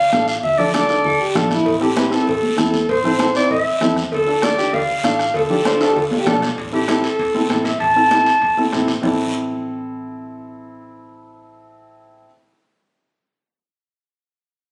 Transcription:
Already playing: clarinet F5
0.12 fingered electric bass A1, upright piano D4 F4 A4, clarinet F5, bombo rim, high conga, short guiro
0.28 clarinet F5, short guiro
0.43 fingered electric bass D2, clarinet E5, bombo low, high conga, long guiro
0.58 upright piano D4 F4 A4, clarinet D5, low conga
0.73 upright piano D4 F4 A4, clarinet D5, bombo rim, high conga, short guiro
0.89 upright piano D4 F4 A4, short guiro
1.04 fingered electric bass D2, clean electric guitar A4, bombo low, high conga, long guiro
1.20 clean electric guitar G4
1.35 fingered electric bass A1, upright piano D4 F4 A4, clean electric guitar F4, bombo rim, high conga, low conga, short guiro
1.50 clean electric guitar E4, bombo rim, high conga, short guiro
1.66 fingered electric bass A1, bombo low, cowbell, long guiro
1.80 upright piano C4 E4 A4, clarinet G4
1.96 upright piano C4 E4 B4, bombo rim, high conga, short guiro
2.11 upright piano C4 E4 A4, clarinet A4, short guiro
2.27 fingered electric bass A1, bombo low, cowbell, high conga, long guiro
2.43 high conga
2.56 fingered electric bass E2, upright piano C4 E4 A4, clarinet A4, bombo rim, high conga, short guiro
2.74 high conga, short guiro
2.89 fingered electric bass A1, clarinet C5, bombo low, cowbell, high conga, long guiro
3.04 upright piano C4 E4 A4, clarinet C5, low conga
3.19 upright piano C4 E4 A4, bombo rim, high conga, short guiro
3.34 upright piano C4 E4 C5, clarinet D5, short guiro
3.50 fingered electric bass A1, clarinet E5, bombo low, cowbell, high conga, long guiro
3.81 fingered electric bass E2, upright piano C4 E4 A4, bombo low, bombo rim, high conga, low conga, low timbale, short guiro
3.96 bombo rim, high conga, short guiro
4.12 fingered electric bass D2, clarinet A4, bombo low, cowbell, high conga, long guiro
4.27 upright piano D4 F4 A4
4.42 upright piano D4 F4 A4, clarinet D5, bombo rim, high conga, short guiro
4.58 upright piano D4 F4 G4, short guiro
4.73 fingered electric bass D2, clarinet F5, bombo low, cowbell, high conga, long guiro
5.04 fingered electric bass A1, upright piano D4 F4 A4, clarinet F5, bombo rim, high conga, low timbale, short guiro
5.19 bombo rim, short guiro
5.34 fingered electric bass D2, clarinet A4, bombo low, cowbell, high conga, long guiro
5.50 upright piano D4 F4 G4, low conga
5.65 clean electric guitar D4, upright piano D4 F4 C5, bombo rim, high conga, short guiro
5.80 upright piano D4 F4 A4, high timbale, short guiro
5.88 clean electric guitar G4
5.96 fingered electric bass D2, clean electric guitar F4, bombo low, cowbell, high conga, long guiro
6.11 high conga, low timbale
6.19 clean electric guitar G4
6.26 fingered electric bass B1, upright piano D4 F4 A4, clean electric guitar A4, bombo rim, high conga, low conga, low timbale, short guiro
6.42 bombo rim, high conga, low timbale, short guiro
6.58 fingered electric bass A1, bombo low, high conga, high timbale, long guiro
6.72 upright piano C4 E4 A4, clarinet G4
6.88 upright piano C4 E4 A4, bombo rim, high conga, high timbale, short guiro
7.04 clarinet A4, high timbale, short guiro
7.19 fingered electric bass C2, bombo low, high conga, high timbale, long guiro
7.35 upright piano C4 E4 A4, high conga
7.49 fingered electric bass A1, upright piano C4 E4 A4, clarinet A4, bombo rim, high conga, high timbale, short guiro
7.65 clarinet E5, high conga, high timbale, short guiro
7.80 fingered electric bass A1, clarinet A5, bombo low, high conga, high timbale, long guiro
7.96 upright piano C4 E4 A4
8.11 upright piano C4 E4 A4, bombo rim, high conga, high timbale, short guiro
8.26 high timbale, short guiro
8.42 fingered electric bass C2, bombo low, high conga, high timbale, long guiro
8.57 upright piano C4 E4 A4, high conga
8.72 fingered electric bass A1, upright piano C4 E4 A4, bombo low, bombo rim, high conga, high timbale, short guiro
8.88 bombo rim, high conga, high timbale, short guiro
9.02 fingered electric bass A1, upright piano C4 E4 A4, bombo low, low conga, low timbale, long guiro

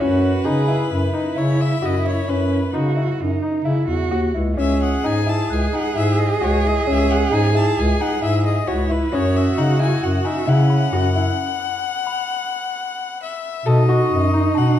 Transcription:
0.00 bass clarinet F#2, grand piano C#4, cello F#4, violin B4
0.45 bass clarinet C#3, grand piano D#4, cello G#4
0.68 grand piano E4
0.91 bass clarinet F#2, cello E4
1.13 grand piano D#4
1.36 bass clarinet C#3, grand piano E4, violin C#5
1.61 violin E5
1.82 bass clarinet F#2, grand piano F#4, violin D#5
2.05 grand piano E4, violin C#5
2.28 bass clarinet F#2, grand piano C#4, violin B4
2.73 bass clarinet C#3, grand piano D#4, cello F#4
2.97 grand piano E4
3.19 bass clarinet F#2, cello D#4
3.42 grand piano D#4
3.60 cello D#4
3.65 bass clarinet C#3, cello E4, grand piano E4
3.87 bass clarinet E2, cello F#4
4.11 bass clarinet D#2, grand piano F#4
4.34 bass clarinet C#2, grand piano E4
4.57 bass clarinet C#2, grand piano C#4, cello G#4, violin E5
4.82 violin F#5, glockenspiel D#6
5.03 bass clarinet G#2, grand piano D#4, violin G#5
5.26 grand piano E4, violin A5
5.49 bass clarinet C#2, violin G#5, glockenspiel F#6
5.73 grand piano D#4, violin F#5
5.95 bass clarinet G#2, grand piano E4, violin E5
6.19 violin D#5
6.41 bass clarinet C#2, grand piano F#4, violin C#5
6.64 grand piano E4, violin D#5
6.87 bass clarinet C#2, grand piano C#4, violin E5
7.11 violin F#5
7.32 bass clarinet G#2, grand piano D#4, violin G#5
7.55 grand piano E4, violin A5
7.77 bass clarinet C#2, violin G#5
8.00 grand piano D#4, violin F#5
8.22 bass clarinet G#2, grand piano E4, violin E5
8.45 violin D#5
8.67 bass clarinet C#2, cello E4, grand piano F#4, violin C#5
8.90 grand piano E4, violin B4
9.12 bass clarinet F#2, grand piano C#4, cello F#4, violin C#5, glockenspiel D#6
9.36 violin E5
9.57 bass clarinet C#3, grand piano D#4, violin F#5
9.80 grand piano E4, violin G#5
10.02 bass clarinet F#2, violin F#5
10.25 grand piano D#4, violin E5, glockenspiel G#5
10.46 bass clarinet C#3, cello C#4, grand piano E4, violin F#5
10.70 glockenspiel B5
10.93 bass clarinet F#2, grand piano F#4
11.16 grand piano E4
12.07 glockenspiel B5
13.22 violin E5
13.65 bass clarinet B2, cello D#4, grand piano A4, violin D#5
13.89 grand piano F#4, glockenspiel C#6
14.11 bass clarinet F#2
14.34 grand piano D#4
14.55 bass clarinet B2, violin F#5, glockenspiel A5

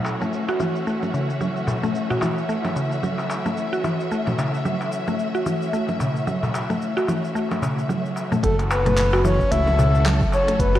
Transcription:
Already playing: string section E3 A3 C#4 F#4 E5, synth pluck F#3
0.05 darbuka tek, shaker
0.21 synth pluck A3, low conga, shaker
0.33 shaker
0.48 synth pluck F#4, darbuka tek, shaker
0.60 synth pluck E3, low conga, shaker
0.76 shaker
0.87 synth pluck A3, shaker
1.03 darbuka ka, low conga, shaker
1.14 synth pluck C#3, shaker
1.30 shaker
1.41 synth pluck F#3, low conga, shaker
1.57 shaker
1.67 darbuka ka, darbuka dum, shaker
1.83 synth pluck A3, low conga, shaker
1.95 shaker
2.10 synth pluck F#4, darbuka ka, darbuka dum, shaker
2.21 synth pluck E3, darbuka tek, low conga, shaker
2.38 shaker
2.49 synth pluck A3, shaker
2.64 darbuka tek, low conga, shaker
2.76 synth pluck C#3, darbuka tek, shaker
2.92 shaker
3.03 synth pluck F#3, low conga, shaker
3.18 darbuka tek, shaker
3.29 darbuka tek, shaker
3.46 synth pluck A3, low conga, shaker
3.57 shaker
3.73 synth pluck F#4, shaker
3.84 synth pluck E3, darbuka ka, low conga, shaker
4.00 shaker
4.11 synth pluck A3, shaker
4.26 darbuka ka, low conga, darbuka dum, shaker
4.38 synth pluck C#3, darbuka tek, shaker
4.54 shaker
4.65 synth pluck F#3, low conga, shaker
4.81 darbuka tek, shaker
4.92 shaker
5.08 synth pluck A3, low conga, shaker
5.19 shaker
5.35 synth pluck F#4, darbuka ka, shaker
5.46 synth pluck E3, low conga, shaker
5.62 shaker
5.73 synth pluck A3, shaker
5.89 low conga, shaker
6.00 synth pluck C#3, darbuka ka, darbuka dum, shaker
6.16 shaker
6.27 synth pluck F#3, low conga, shaker
6.43 darbuka ka, darbuka dum, shaker
6.54 darbuka tek, shaker
6.70 synth pluck A3, low conga, shaker
6.82 shaker
6.97 synth pluck F#4, darbuka tek, shaker
7.07 synth pluck E3, darbuka tek, low conga, shaker
7.24 shaker
7.35 synth pluck A3, shaker
7.51 darbuka ka, darbuka tek, low conga, shaker
7.62 synth pluck C#3, darbuka tek, darbuka dum, shaker
7.78 darbuka ka, shaker
7.89 synth pluck F#3, low conga, shaker
8.06 shaker
8.16 darbuka ka, shaker
8.32 synth pluck A3, darbuka dum, low conga, shaker
8.43 analog synth bass F#1, string section E3 A3 C#4 F#4 A4, synth pluck F#3, soft synth lead A4, kick, closed hi-hat, low conga, shaker
8.59 closed hi-hat, darbuka ka, shaker
8.71 soft synth lead B4, darbuka tek, shaker
8.86 synth pluck A3, closed hi-hat, darbuka dum, low conga, shaker
8.98 clap, closed hi-hat, shaker
9.13 synth pluck F#4, darbuka tek, shaker
9.25 synth pluck E3, soft synth lead C#5, low conga, shaker
9.40 kick, shaker
9.51 analog synth bass C#2, synth pluck A3, soft synth lead E5, closed hi-hat, shaker
9.67 darbuka ka, low conga, shaker
9.78 synth pluck C#3, darbuka dum, shaker
9.95 shaker
10.05 synth pluck F#3, clap, closed hi-hat, low conga, shaker
10.21 kick, shaker
10.32 soft synth lead C#5, darbuka ka, shaker
10.48 synth pluck A3, closed hi-hat, low conga, shaker
10.59 analog synth bass F#1, soft synth lead B4, kick, closed hi-hat, shaker
10.75 synth pluck F#4, closed hi-hat, darbuka ka, shaker

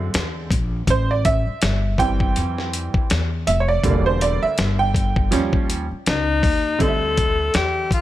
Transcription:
Already playing: upright bass F#2, upright piano D3 G#3 C4
0.14 upright bass E2, snare, closed hi-hat
0.51 upright bass A#1, kick, closed hi-hat
0.87 upright bass A1, upright piano C5, kick, closed hi-hat
1.11 upright piano D5
1.25 upright piano E5, kick, closed hi-hat
1.47 muted upright bass stroke
1.62 upright bass G1, snare, closed hi-hat
1.98 upright piano E3 G3 C4 G5, kick, closed hi-hat
2.20 kick
2.36 upright bass F2, closed hi-hat
2.58 snare
2.73 closed hi-hat
2.94 muted upright bass stroke, kick
3.10 upright bass E2, snare, closed hi-hat
3.47 upright bass F1, upright piano E5, closed hi-hat
3.60 upright piano C#5
3.68 upright piano D5
3.83 upright bass E1, upright piano D3 G3 A#3, kick, closed hi-hat
4.06 upright piano C5
4.21 upright piano D5, closed hi-hat
4.43 upright piano E5, muted upright bass stroke
4.58 upright bass G1, snare, closed hi-hat
4.79 upright piano G5
4.94 kick, closed hi-hat
5.16 kick
5.31 upright bass D#2, upright piano F3 G3 C#4, snare, closed hi-hat
5.53 kick
5.70 closed hi-hat
5.91 muted upright bass stroke
6.06 upright bass C#2, alto saxophone D#4, snare, closed hi-hat
6.43 upright bass D#2, kick, open hi-hat
6.78 upright bass D2, upright piano D3 G3 C4 D#4, alto saxophone A4, kick, closed hi-hat
6.88 upright piano E5
7.17 kick, closed hi-hat
7.54 upright bass E2, alto saxophone G4, snare, closed hi-hat
7.91 alto saxophone F4, kick, closed hi-hat

